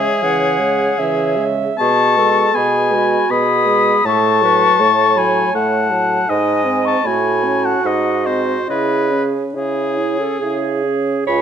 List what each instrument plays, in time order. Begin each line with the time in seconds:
Already playing: french horn G#3, oboe G#4, flute C#5, clarinet E5
0.23 bassoon C#3, french horn E3, clarinet F#5
0.60 french horn G#3
0.99 bassoon C#3, french horn E3, clarinet E5
1.37 french horn G#3
1.78 bassoon B2, french horn B3, clarinet G#4, oboe A5, flute C#6
2.18 french horn G#3, clarinet A4
2.54 bassoon B2, french horn B3, clarinet G#4, oboe G#5, flute B5
2.91 french horn G#3, clarinet F#4
3.29 bassoon B2, french horn B3, clarinet G#4, oboe B5, flute D#6
3.66 french horn G#3
4.04 bassoon A2, french horn A3, clarinet A4, oboe A5
4.08 flute C#6
4.43 french horn F#3, clarinet B4
4.80 bassoon A2, french horn A3, clarinet C#5
5.16 french horn F#3, oboe G#5, flute B5
5.54 bassoon A2, french horn A3, oboe F#5, flute A5
5.91 french horn F#3
6.28 bassoon G#2, french horn D#4, clarinet D#5, oboe D#5, flute G#5
6.64 french horn C4
6.85 oboe A5, flute C#6
7.04 bassoon A2, french horn A3, clarinet F#4, oboe G#5, flute B5
7.44 french horn C#4
7.64 oboe F#5, flute A5
7.83 bassoon G#2, french horn D#4, oboe D#5, flute F#5
8.25 french horn C4, oboe C5, flute D#5
8.66 bassoon C#3, french horn E4, clarinet G#4, oboe B4, flute D#5
9.12 french horn C#4
9.54 bassoon C#3, clarinet E4, french horn E4, oboe G#4, flute C#5
9.98 french horn C#4
10.19 clarinet A4
10.40 bassoon C#3, french horn E4, clarinet G#4
10.84 french horn C#4
11.27 bassoon C#2, french horn F4, clarinet C#5, flute G#5, oboe B5